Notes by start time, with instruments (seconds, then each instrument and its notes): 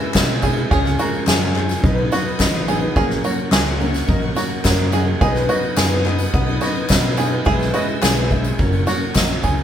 Already playing: upright piano B1 B2 G#3 B3 E4 B4 C#5 E5, five-string banjo F#4, string section B4 G#5 E6
0.01 steel-string acoustic guitar G#3 B3 E4 G#4
0.14 fingered electric bass B2, upright piano G#3 B3 E4 B4 D#5, kick, snare, clap, ride, tambourine
0.42 steel-string acoustic guitar G#3 B3 E4 G#4, upright piano G#3 B3 E4 B4 C#5, five-string banjo G#4, kick, ride, tambourine
0.57 steel-string acoustic guitar G#3 B3 E4 G#4, tambourine
0.71 fingered electric bass C#2, upright piano C#2 C#3 F3 G#3 C#4 G#4 C#5, steel-string acoustic guitar C#3 G#3 C#4 F4 G#4, five-string banjo G#4, string section G#4 F5 C#6, kick, ride, tambourine
0.85 snare, tambourine
0.99 upright piano F3 G#3 C#4 G#4 A#4, five-string banjo F#4, ride, tambourine
1.14 steel-string acoustic guitar C#4 F4 G#4, tambourine
1.27 fingered electric bass F#2, steel-string acoustic guitar C#3 G#3 C#4 F4 G#4, upright piano F3 G#3 C#4 G#4 A#4, five-string banjo G#4, snare, clap, ride, tambourine
1.42 tambourine
1.55 upright piano F3 G#3 C#4 G#4 C#5, steel-string acoustic guitar G#3 C#4 F4 G#4, clap, ride, tambourine
1.69 snare, tambourine
1.83 upright piano B1 B2 F#3 B3 D#4 B4 D#5, fingered electric bass B1, steel-string acoustic guitar B2 D#3 F#3 B3 D#4 B4, string section B4 F#5 D#6, kick, ride
1.97 steel-string acoustic guitar F#3 B3 D#4 B4
2.12 upright piano F#3 B3 D#4 B4 F5, steel-string acoustic guitar F#3 B3 D#4 B4, five-string banjo F#4, snare, ride, tambourine
2.26 steel-string acoustic guitar F#3 B3 D#4 B4, tambourine
2.39 fingered electric bass A1, upright piano F#3 B3 D#4 B4 D#5, kick, snare, clap, ride, tambourine
2.54 tambourine
2.68 upright piano F#3 B3 D#4 B4 D#5, steel-string acoustic guitar F#3 B3 D#4 B4, five-string banjo G#4, ride, tambourine
2.81 steel-string acoustic guitar F#3 B3 D#4 B4
2.96 upright piano A#1 A#2 F#3 A#3 C#4 A#4 C#5, fingered electric bass A#1, steel-string acoustic guitar A#3 C#4 F#4 A#4, five-string banjo G#4, string section A#4 C#6, kick, ride, tambourine
3.10 snare
3.24 upright piano F#3 A#3 C#4 A#4 C#5, five-string banjo F#4, ride, tambourine
3.38 steel-string acoustic guitar C#4 F#4 A#4, tambourine
3.52 fingered electric bass C#2, upright piano F#3 A#3 C#4 A#4 D#5, steel-string acoustic guitar A#3 C#4 F#4 A#4, five-string banjo G#4, snare, clap, ride, tambourine
3.80 upright piano F#3 A#3 C#4 A#4 C#5, steel-string acoustic guitar A#3 C#4 F#4 A#4, ride, tambourine
3.94 snare, tambourine
4.08 fingered electric bass A#1, upright piano F#3 A#3 C#4 A#4 D#5, steel-string acoustic guitar A#3 C#4 F#4 A#4, kick, ride
4.22 steel-string acoustic guitar C#4 F#4 A#4
4.35 upright piano F#3 A#3 C#4 A#4 C#5 A#5, steel-string acoustic guitar A#3 C#4 F#4 A#4, five-string banjo F#4, snare, ride, tambourine
4.51 tambourine
4.64 fingered electric bass F#2, upright piano F#3 A#3 C#4 A#4 C#5 F#5, kick, snare, clap, ride, tambourine
4.79 tambourine
4.92 upright piano F#3 A#3 C#4 A#4 D#5, steel-string acoustic guitar A#3 C#4 F#4 A#4, five-string banjo G#4, ride, tambourine
5.07 steel-string acoustic guitar C#4 F#4 A#4
5.21 fingered electric bass B1, upright piano B1 B2 F#3 B3 D#4 B4 D#5, steel-string acoustic guitar B2 D#3 F#3 B3 D#4 B4, five-string banjo G#4, string section B4 D#6, kick, ride, tambourine
5.34 snare, tambourine
5.49 upright piano F#3 B3 D#4 B4 D#5, five-string banjo F#4, ride, tambourine
5.63 steel-string acoustic guitar F#3 B3 D#4 B4, tambourine
5.76 fingered electric bass F#2, steel-string acoustic guitar B2 D#3 F#3 B3 D#4 B4, upright piano F#3 B3 D#4 B4 F5, five-string banjo G#4, snare, clap, ride, tambourine
5.91 tambourine
6.05 steel-string acoustic guitar F#3 B3 D#4 B4, upright piano F#3 B3 D#4 B4 D#5, clap, ride, tambourine
6.19 steel-string acoustic guitar F#3 B3 D#4 B4, tambourine
6.34 fingered electric bass B1, steel-string acoustic guitar B2 D#3 F#3 B3 D#4 B4, upright piano F#3 B3 D#4 B4 F#5, kick, ride
6.48 steel-string acoustic guitar F#3 B3 D#4 B4
6.61 upright piano F#3 B3 D#4 B4 D#5, steel-string acoustic guitar F#3 B3 D#4 B4, five-string banjo F#4, snare, ride, tambourine
6.75 steel-string acoustic guitar F#3 B3 D#4 B4, tambourine
6.89 fingered electric bass B2, upright piano F#3 B3 D#4 B4 D#5, kick, snare, clap, ride, tambourine
7.03 tambourine
7.17 steel-string acoustic guitar F#3 B3 D#4 B4, upright piano F#3 B3 D#4 B4 F5, five-string banjo G#4, ride, tambourine
7.33 steel-string acoustic guitar F#3 B3 D#4 B4
7.45 fingered electric bass B1, upright piano B1 B2 G#3 B3 E4 B4 E5, steel-string acoustic guitar B2 E3 G#3 B3 E4 G#4, five-string banjo G#4, string section G#5 E6, kick, ride, tambourine
7.59 snare, tambourine
7.74 upright piano G#3 B3 E4 B4 D#5, five-string banjo F#4, ride, tambourine
7.88 steel-string acoustic guitar G#3 B3 E4 G#4, tambourine
8.02 fingered electric bass B1, steel-string acoustic guitar B2 E3 G#3 B3 E4 G#4, upright piano G#3 B3 E4 B4 C#5, five-string banjo G#4, snare, clap, ride, tambourine
8.17 tambourine
8.30 steel-string acoustic guitar G#3 B3 E4 G#4, upright piano G#3 B3 E4 B4 E5, kick, ride, tambourine
8.44 tambourine
8.58 fingered electric bass F#1, upright piano F#1 F#2 F#3 A#3 C#4 A#4 C#5, steel-string acoustic guitar F#3 C#4 F#4 A#4, string section A#4 F#5 C#6, kick, ride, tambourine
8.72 steel-string acoustic guitar C#4 F#4 A#4, tambourine
8.86 steel-string acoustic guitar F#3 C#4 F#4 A#4, upright piano F#3 A#3 C#4 A#4 C#5, five-string banjo F#4, snare, ride, tambourine
9.00 steel-string acoustic guitar C#4 F#4 A#4, tambourine
9.15 fingered electric bass A#1, upright piano F#3 A#3 C#4 A#4 D#5, kick, snare, clap, ride, tambourine
9.29 tambourine
9.43 fingered electric bass C#2, steel-string acoustic guitar F#3 C#4 F#4 A#4, upright piano F#3 A#3 C#4 A#4 C#5, five-string banjo G#4, kick, ride, tambourine
9.57 steel-string acoustic guitar C#4 F#4 A#4